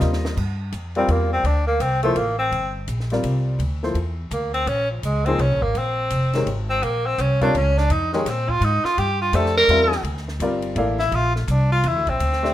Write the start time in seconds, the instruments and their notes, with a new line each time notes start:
Already playing: grand piano G3 C4 F4 A#4 D#5
0.00 upright bass D#2, snare, hi-hat pedal
0.13 snare
0.25 snare
0.37 upright bass G2, kick, crash
0.72 upright bass F2, hi-hat pedal, ride
0.95 grand piano G3 C4 F4 A#4 D5, tenor saxophone C4, ride
1.08 upright bass E2, tenor saxophone A#3, ride
1.33 tenor saxophone C4
1.44 upright bass D2, tenor saxophone D4, ride
1.67 tenor saxophone A#3
1.80 upright bass C2, tenor saxophone C4, hi-hat pedal, ride
2.03 grand piano F3 A#3 E4 A4 C5, tenor saxophone A3, ride
2.16 upright bass A1, tenor saxophone A#3, ride
2.39 tenor saxophone C4
2.51 upright bass G1, ride
2.88 upright bass A#1, hi-hat pedal, ride
3.00 snare
3.10 grand piano G3 C4 F4 A#4 D5, snare, ride
3.23 upright bass C2, ride
3.59 upright bass D2, ride
3.83 grand piano F3 A#3 E4 A4 C5, snare
3.95 upright bass E2, ride
4.31 upright bass D2, tenor saxophone A#3, hi-hat pedal, ride
4.54 tenor saxophone C4, ride
4.67 upright bass A#1, tenor saxophone C#4, ride
4.91 tenor saxophone F3
5.03 upright bass C#2, tenor saxophone G#3, hi-hat pedal, ride
5.26 grand piano F3 A#3 D#4 G#4 C5, tenor saxophone C4, ride
5.38 upright bass C2, tenor saxophone C#4, ride
5.51 upright bass A#1
5.62 upright bass G#1, tenor saxophone A#3, kick
5.75 upright bass A#1, tenor saxophone C4, ride
6.10 upright bass F1, hi-hat pedal, ride
6.33 grand piano D#3 G#3 C#4 G4 A#4, snare, ride
6.46 upright bass G#1, ride
6.70 tenor saxophone C4
6.83 upright bass A#1, tenor saxophone A#3, ride
7.06 tenor saxophone C4
7.18 upright bass C2, tenor saxophone C#4, hi-hat pedal, ride
7.41 grand piano G3 C4 F4 A#4 C#5, tenor saxophone D4, kick, ride
7.54 upright bass C#2, tenor saxophone C#4, ride
7.77 tenor saxophone D4, snare
7.90 upright bass F2, tenor saxophone D#4, ride
8.13 grand piano D#3 G#3 C#4 G4 A#4, tenor saxophone G#3, snare
8.25 upright bass A#2, tenor saxophone C4, snare, hi-hat pedal, ride
8.49 tenor saxophone F4, kick
8.61 upright bass G#2, tenor saxophone D#4, ride
8.84 tenor saxophone F4, muted upright bass stroke, snare
8.98 upright bass G2, tenor saxophone G4, ride
9.22 tenor saxophone F4
9.33 upright bass F2, grand piano A3 D4 G4 C5 E5, tenor saxophone A4, hi-hat pedal, ride
9.46 snare
9.57 tenor saxophone A#4, snare
9.68 upright bass E2, grand piano G3 C4 F4 A#4 E5, ride
9.92 snare
10.03 upright bass D2, ride
10.17 snare
10.28 snare
10.40 upright bass G1, grand piano G3 C4 F4 A#4 D5, hi-hat pedal, ride
10.62 ride
10.76 upright bass A1, grand piano A#3 E4 A4 D5 F5, ride
10.99 tenor saxophone E4, snare
11.12 upright bass A#1, tenor saxophone F4, ride
11.36 tenor saxophone A3, snare
11.48 upright bass C2, tenor saxophone D4, hi-hat pedal, ride
11.72 tenor saxophone F4
11.83 upright bass E2, tenor saxophone E4, ride
11.96 upright bass D2
12.07 upright bass A#1, tenor saxophone C4, kick, ride
12.19 upright bass D2, ride
12.33 snare
12.43 grand piano A3 D4 G4 C5 E5, snare